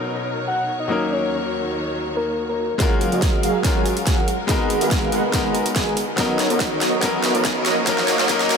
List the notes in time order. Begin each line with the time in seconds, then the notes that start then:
Already playing: B2 F#3 B3 C#4 D#4 A#4 C#5
0.47 F#5
0.80 D#5
0.88 D#2 D#3 F#3 A#3 C#4 D#4 F#4
0.92 A#4
1.11 C#5
2.17 A#4
2.49 A#4
2.78 F#1 F#3 G#3 C#4 F4 F#4 G#4 A#4 F5, kick, snare, closed hi-hat, riser
2.82 A#4
3.01 closed hi-hat
3.12 F#1 F#3 F#4 G#4 A#4 D#5, closed hi-hat
3.22 kick, snare, closed hi-hat
3.43 F#1 F#3 F#4 G#4 A#4 F5, closed hi-hat
3.62 G#3 C#4 F4 F#4, kick, snare, closed hi-hat
3.66 A#4
3.76 F#1 F#3 F#4 G#4 A#4 G#5
3.86 closed hi-hat
3.97 closed hi-hat
4.07 F#1 F#3 F#4 G#4 A#4 F#5, kick, snare, closed hi-hat
4.28 closed hi-hat
4.47 G#1 G#3 B3 D#4 F#4 G#4 A#4 B4 F#5, kick, snare, closed hi-hat
4.51 A#4
4.70 closed hi-hat
4.81 G#1 G#3 G#4 A#4 B4 F5, closed hi-hat
4.91 kick, snare, closed hi-hat
5.12 G#1 G#3 G#4 A#4 B4 F#5, closed hi-hat
5.32 G#3 B3 D#4 F#4 A#4, kick, snare, closed hi-hat
5.45 G#1 G#3 G#4 A#4 B4 A#5
5.55 closed hi-hat
5.66 closed hi-hat
5.76 G#1 G#3 G#4 A#4 B4 G#5, kick, snare, closed hi-hat
5.97 closed hi-hat
6.16 B1 F#3 B3 C#4 D#4 F#4 A#4 C#5 D#5, kick, snare, closed hi-hat
6.20 A#4
6.39 snare, closed hi-hat
6.50 B1 B3 F#4 A#4 C#5 D#5, closed hi-hat
6.60 kick, snare, closed hi-hat
6.81 B1 B3 F#4 A#4 C#5 D#5, snare, closed hi-hat
7.00 B1 F#3 B3 C#4 D#4 F#4 A#4 C#5 D#5, kick, snare, closed hi-hat
7.05 A#4
7.24 snare, closed hi-hat
7.35 B1 B3 F#4 A#4 C#5 D#5, closed hi-hat
7.45 kick, snare, closed hi-hat
7.66 D#1 D#3 A#3 C#4 F#4 A#4 C#5 D#5, snare, closed hi-hat
7.85 D#1 F#3 A#3 C#4 D#4 F#4 A#4 C#5 D#5, kick, snare, closed hi-hat
7.89 A#4
7.98 snare
8.08 snare, closed hi-hat
8.19 D#1 A#3 F#4 A#4 C#5 D#5, snare, closed hi-hat
8.27 D#1 F#3 A#3 C#4 D#4 F#4 A#4 C#5 D#5, kick, snare, closed hi-hat
8.40 snare
8.50 snare, closed hi-hat